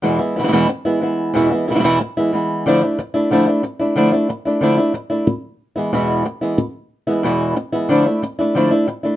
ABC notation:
X:1
M:4/4
L:1/8
Q:1/4=183
K:none
V:1 name="Nylon-string guitar"
[E,,B,,E,^G,B,E] [E,G,B,E] [E,G,B,E] [E,,B,,E,G,B,E] z [E,G,B,E] [E,G,B,E]2 | [E,,B,,E,^G,B,E] [E,B,E] [E,G,B,E] [E,,B,,E,G,B,E] z [E,G,B,E] [E,G,B,E]2 | [D,F,A,DE] [A,D] z [A,DE] [D,F,A,DE] [A,DE] z [A,DE] | [D,F,A,DE] [A,DE] z [A,DE] [D,F,A,DE] [A,DE] z [A,DE] |
z3 [E,^G,B,E] [E,,B,,E,G,B,E]2 z [E,G,B,E] | z3 [E,^G,B,E] [E,,B,,E,G,B,E]2 z [E,G,B,E] | [D,F,A,DE] [A,DE] z [A,DE] [D,F,A,DE] [A,DE] z [A,DE] |]